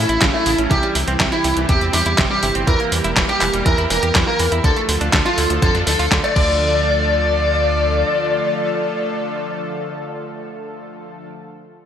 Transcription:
Already playing: analog synth pad C#3 E3 A3 E4 A4, lead electric guitar E4
0.09 analog synth bass A1, clean electric guitar E4, closed hi-hat
0.21 analog synth bass A1, clean electric guitar C#3, kick, snare, clap, closed hi-hat
0.34 clean electric guitar A3, lead electric guitar E4
0.46 analog synth bass A1, clean electric guitar C#3, open hi-hat
0.58 analog synth bass A1, clean electric guitar C#4, closed hi-hat
0.71 analog synth bass C2, analog synth pad C3 G3 G4, clean electric guitar C3, lead electric guitar G4, kick, closed hi-hat
0.83 clean electric guitar G3, closed hi-hat
0.95 analog synth bass C2, clean electric guitar C3, open hi-hat
1.08 analog synth bass C2, clean electric guitar C4, closed hi-hat
1.20 analog synth bass C2, clean electric guitar C3, kick, snare, clap, closed hi-hat
1.32 lead electric guitar E4, clean electric guitar E4, closed hi-hat
1.44 analog synth bass C2, clean electric guitar C3, open hi-hat
1.57 analog synth bass C2, clean electric guitar E3, closed hi-hat
1.69 analog synth bass E2, clean electric guitar C3, lead electric guitar G4, kick, closed hi-hat
1.81 analog synth bass E2, clean electric guitar C4, closed hi-hat
1.93 analog synth bass E2, clean electric guitar C3, lead electric guitar G4, open hi-hat
2.06 analog synth bass E2, clean electric guitar E4, closed hi-hat
2.18 analog synth bass G1, clean electric guitar C3, kick, snare, clap, closed hi-hat
2.31 clean electric guitar G3, lead electric guitar G4
2.43 analog synth bass G1, clean electric guitar C3, open hi-hat
2.55 analog synth bass G1, clean electric guitar C4, closed hi-hat
2.67 analog synth bass E2, clean electric guitar E3, analog synth pad A#3 A#4, lead electric guitar A#4, kick, closed hi-hat
2.80 clean electric guitar A#3, closed hi-hat
2.92 analog synth bass E2, clean electric guitar E3, open hi-hat
3.04 analog synth bass E1, clean electric guitar E4, closed hi-hat
3.17 analog synth bass E1, clean electric guitar E3, kick, snare, clap, closed hi-hat
3.29 lead electric guitar G4, clean electric guitar G4, closed hi-hat
3.41 analog synth bass E1, clean electric guitar E3, clap, open hi-hat
3.54 analog synth bass E1, clean electric guitar G3, closed hi-hat
3.66 analog synth bass E2, clean electric guitar E3, lead electric guitar A#4, kick, closed hi-hat
3.78 analog synth bass E2, clean electric guitar E4, closed hi-hat
3.90 analog synth bass E1, clean electric guitar E3, lead electric guitar A#4, open hi-hat
4.03 analog synth bass E2, clean electric guitar G4, closed hi-hat
4.15 analog synth bass E2, clean electric guitar E3, kick, snare, clap, closed hi-hat
4.27 clean electric guitar A#3, lead electric guitar A#4
4.40 analog synth bass E2, clean electric guitar E3, open hi-hat
4.52 analog synth bass E2, clean electric guitar E4, closed hi-hat
4.64 analog synth bass D2, analog synth pad D3 F3 A3 F4 A4, clean electric guitar D3, lead electric guitar A4, kick, closed hi-hat
4.76 clean electric guitar A3, closed hi-hat
4.89 analog synth bass D2, clean electric guitar D3, open hi-hat
5.01 analog synth bass D2, clean electric guitar D4, closed hi-hat
5.13 analog synth bass D2, clean electric guitar D3, kick, snare, clap, closed hi-hat
5.26 clean electric guitar F4, lead electric guitar F4, closed hi-hat
5.38 analog synth bass D2, clean electric guitar D3, open hi-hat
5.50 analog synth bass D2, clean electric guitar F3, closed hi-hat
5.62 analog synth bass F2, clean electric guitar D3, lead electric guitar A4, kick, closed hi-hat
5.75 analog synth bass F2, clean electric guitar D4, snare, closed hi-hat
5.87 analog synth bass D2, clean electric guitar D3, lead electric guitar A4, open hi-hat
5.99 analog synth bass D2, clean electric guitar F4, open hi-hat
6.12 analog synth bass D2, clean electric guitar D3, kick, snare, clap, closed hi-hat
6.24 clean electric guitar A3, lead electric guitar D5, closed hi-hat
6.36 analog synth bass D2, analog synth pad D3 F3 A3 F4 A4, clean electric guitar D3, lead electric guitar D5, kick, crash

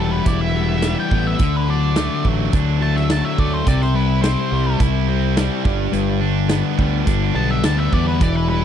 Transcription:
Already playing: fingered electric bass E1, distorted electric guitar E3 G3 B3 E4
0.00 lead electric guitar A4
0.13 lead electric guitar B4
0.25 fingered electric bass E1, distorted electric guitar E3 E4, lead electric guitar D5, kick, closed hi-hat
0.41 lead electric guitar E5
0.54 distorted electric guitar G3 B3
0.82 distorted electric guitar G3 E4, snare, closed hi-hat
1.00 lead electric guitar G5
1.11 fingered electric bass A1, distorted electric guitar B3, kick
1.27 lead electric guitar E5
1.39 fingered electric bass D2, distorted electric guitar D3, kick, closed hi-hat
1.56 lead electric guitar B4
1.67 distorted electric guitar F#3 D4, lead electric guitar D5
1.96 distorted electric guitar D3 A3, snare, closed hi-hat
2.24 fingered electric bass A1, distorted electric guitar F#3, kick
2.53 fingered electric bass D2, distorted electric guitar D3 D4, kick, closed hi-hat
2.81 distorted electric guitar F#3 A3, lead electric guitar A5
2.96 lead electric guitar E5, snare
3.09 distorted electric guitar F#3 D4, lead electric guitar A5, snare, closed hi-hat
3.25 lead electric guitar E5
3.37 fingered electric bass D2, distorted electric guitar A3, lead electric guitar D5, kick
3.54 lead electric guitar C5
3.66 fingered electric bass C2, distorted electric guitar C3, lead electric guitar D5, kick, closed hi-hat
3.81 lead electric guitar C5, snare
3.94 distorted electric guitar G3 E4, lead electric guitar B4
4.22 distorted electric guitar C3 C4, lead electric guitar C5, snare, closed hi-hat
4.51 fingered electric bass C2, distorted electric guitar G3
4.80 fingered electric bass C2, distorted electric guitar C3 E4, kick, closed hi-hat
5.08 distorted electric guitar G3 C4
5.37 distorted electric guitar G3 E4, snare, closed hi-hat
5.64 fingered electric bass G1, distorted electric guitar G2, kick
5.93 fingered electric bass G1, distorted electric guitar G2, closed hi-hat
6.21 distorted electric guitar D3 D4
6.49 distorted electric guitar D3 B3, snare, closed hi-hat
6.78 fingered electric bass D2, distorted electric guitar G3, kick
7.06 fingered electric bass G1, distorted electric guitar D3 D4, kick, closed hi-hat
7.35 fingered electric bass B1, distorted electric guitar G3 B3, lead electric guitar A5
7.51 lead electric guitar E5
7.63 fingered electric bass D2, distorted electric guitar G3 D4, lead electric guitar A5, snare, closed hi-hat
7.79 lead electric guitar E5
7.91 fingered electric bass E2, distorted electric guitar B3, lead electric guitar D5, kick
8.08 lead electric guitar B4
8.19 fingered electric bass E1, distorted electric guitar E3, lead electric guitar D5, kick, closed hi-hat
8.37 lead electric guitar B4
8.48 distorted electric guitar G3 E4, lead electric guitar B4

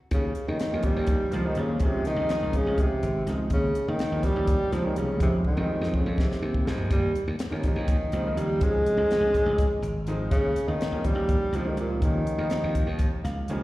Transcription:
0.11 slap bass D#2, tenor saxophone C#3, kick, closed hi-hat
0.35 closed hi-hat
0.48 slap bass D#2, tenor saxophone D#3
0.59 muted slap bass stroke, snare, closed hi-hat
0.72 slap bass D#2, grand piano D#3 F3 G3 A#3 C#4
0.83 tenor saxophone G3, kick, closed hi-hat
0.96 slap bass D#2
1.07 kick, closed hi-hat
1.31 slap bass C#2, grand piano D#3 F3 G3 A#3 C4, tenor saxophone F3, snare, closed hi-hat
1.45 grand piano D#3 F3 G3 A#3 C4, tenor saxophone D#3
1.55 slap bass D#2, closed hi-hat
1.59 tenor saxophone C#3
1.80 slap bass C#2, grand piano D#3 F3 G#3 C4 C#4, kick, closed hi-hat
1.84 tenor saxophone C3
2.05 tenor saxophone D#3, snare, closed hi-hat
2.16 slap bass C#2, grand piano D#3 F3 G#3 C4 D#4
2.29 snare, closed hi-hat
2.43 slap bass C#2
2.53 tenor saxophone C#3, kick, closed hi-hat
2.66 slap bass C#2
2.78 tenor saxophone C3, kick, closed hi-hat
3.03 slap bass G#1, closed hi-hat
3.26 slap bass C#2, grand piano D#3 F3 G#3 C4 D#4, snare, closed hi-hat
3.50 slap bass D#2, tenor saxophone C#3, kick, closed hi-hat
3.75 closed hi-hat
3.88 slap bass D#2, tenor saxophone D#3
3.99 muted slap bass stroke, snare, closed hi-hat
4.12 slap bass D#2, grand piano D#3 F3 G3 A#3 C#4
4.23 tenor saxophone G3, kick, snare, closed hi-hat
4.36 slap bass D#2
4.47 kick, closed hi-hat
4.72 slap bass C#2, grand piano D#3 F3 G3 A#3 C4, tenor saxophone F3, snare, closed hi-hat
4.84 grand piano D#3 F3 G3 A#3 C#4, tenor saxophone D#3
4.96 slap bass C2, tenor saxophone C#3, closed hi-hat
5.20 slap bass F2, tenor saxophone C3, grand piano D#3 F3 G3 G#3 C4, kick, closed hi-hat
5.45 tenor saxophone D#3, kick
5.57 slap bass F2, grand piano D#3 F3 G3 G#3 C4, high tom
5.70 muted slap bass stroke
5.81 slap bass F2, snare
5.94 tenor saxophone C#3, kick
6.06 slap bass F2
6.18 tenor saxophone C3, kick, snare
6.32 snare
6.42 slap bass D#2
6.54 kick
6.65 slap bass D#2, grand piano D#3 F3 G3 G#3 C4, snare
6.78 floor tom
6.91 slap bass D#2, tenor saxophone G3, kick, closed hi-hat
7.15 closed hi-hat
7.28 slap bass D#2
7.39 muted slap bass stroke, snare, closed hi-hat
7.50 slap bass D#2, grand piano D#3 F3 G3 A#3 C#4
7.63 tenor saxophone D#3, kick, snare, closed hi-hat
7.76 slap bass D#2
7.88 kick, closed hi-hat
8.12 slap bass C#2, grand piano D#3 F3 G3 A#3 C4, closed hi-hat
8.25 grand piano D#3 F3 G3 A#3 D#4
8.37 slap bass D#2, tenor saxophone G3, closed hi-hat
8.61 slap bass C#2, grand piano D#3 F3 G#3 C4 C#4, tenor saxophone G#3, kick, closed hi-hat
8.86 closed hi-hat
8.97 slap bass C#2, grand piano D#3 F3 G#3 C4 C#4
9.11 snare, closed hi-hat
9.20 slap bass C#2
9.34 kick, closed hi-hat
9.46 slap bass C#2
9.58 kick, closed hi-hat
9.82 slap bass G#1, closed hi-hat
10.07 slap bass G#1, grand piano D#3 F3 G#3 C4 D#4, closed hi-hat
10.31 slap bass D#2, tenor saxophone C#3, kick, closed hi-hat
10.56 closed hi-hat
10.68 slap bass D#2, tenor saxophone D#3
10.79 muted slap bass stroke, snare, closed hi-hat
10.92 slap bass D#2, grand piano D#3 F3 G3 A#3 C#4
11.04 tenor saxophone G3, kick, closed hi-hat
11.15 slap bass D#2
11.29 kick, closed hi-hat
11.52 slap bass C#2, grand piano D#3 F3 G3 A#3 C4, tenor saxophone F3, closed hi-hat
11.66 tenor saxophone D#3, grand piano D#3 F3 G3 A#3 C4
11.77 slap bass C#2, tenor saxophone A#2, closed hi-hat
12.02 slap bass D#2, grand piano D#3 F3 G3 A#3 C#4, tenor saxophone D#3, kick, closed hi-hat
12.27 closed hi-hat
12.38 slap bass D#2, grand piano D#3 F3 G3 A#3 D#4
12.50 muted slap bass stroke, snare, closed hi-hat
12.64 slap bass D#2
12.75 kick, closed hi-hat
12.86 slap bass D#2
12.99 kick, closed hi-hat
13.24 slap bass C#2, grand piano F5, snare, closed hi-hat
13.48 slap bass C#2, grand piano D#3 F3 G3 A#3 C#4 C#5, closed hi-hat

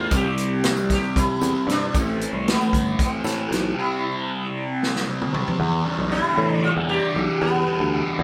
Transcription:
Already playing: distorted electric guitar E3 A3, sitar F4
0.10 picked electric bass C2, distorted electric guitar C3 G3 C4, kick, closed hi-hat, tambourine
0.15 sitar G4
0.24 picked electric bass C2, tambourine
0.37 closed hi-hat
0.64 snare, closed hi-hat
0.77 tambourine
0.90 sitar G4, kick, snare, closed hi-hat
1.03 tambourine
1.16 picked electric bass C2, sitar E4, kick, closed hi-hat, tambourine
1.41 picked electric bass E2, distorted electric guitar C3 G3 C4, closed hi-hat, tambourine
1.55 tambourine
1.67 picked electric bass G2, distorted electric guitar C3 G3 C4, snare, closed hi-hat
1.72 sitar D4
1.94 picked electric bass A1, distorted electric guitar A2 E3 A3, kick, closed hi-hat, tambourine
1.99 sitar C4
2.08 tambourine
2.21 closed hi-hat
2.33 picked electric bass C2
2.48 sitar B3, snare, closed hi-hat
2.61 tambourine
2.73 picked electric bass G1, kick, closed hi-hat
2.85 tambourine
2.99 sitar C4, kick, closed hi-hat, tambourine
3.24 picked electric bass A2, distorted electric guitar A2 E3 A3, snare, closed hi-hat, tambourine
3.38 tambourine
3.49 picked electric bass B1, distorted electric guitar A2 E3, snare, closed hi-hat
3.53 distorted electric guitar A3
3.75 distorted electric guitar C3 G3 C4
3.80 sitar E4
4.83 snare
4.96 snare
5.06 distorted electric guitar C3 G3 C4
5.22 mid tom
5.32 distorted electric guitar C3 G3 C4, mid tom
5.47 floor tom
5.58 distorted electric guitar E2, picked electric bass E2
5.84 distorted electric guitar G3
5.99 picked electric bass B1
6.11 distorted electric guitar D4, sitar E4
6.37 picked electric bass A2, distorted electric guitar E3
6.62 distorted electric guitar D4, sitar F4
6.77 picked electric bass E2
6.88 distorted electric guitar G3, sitar G4
7.14 picked electric bass B1, distorted electric guitar E3
7.39 distorted electric guitar E2, picked electric bass E2, sitar B3
7.66 distorted electric guitar G3
7.80 picked electric bass D2
7.93 distorted electric guitar D4
8.17 picked electric bass E2, distorted electric guitar E3

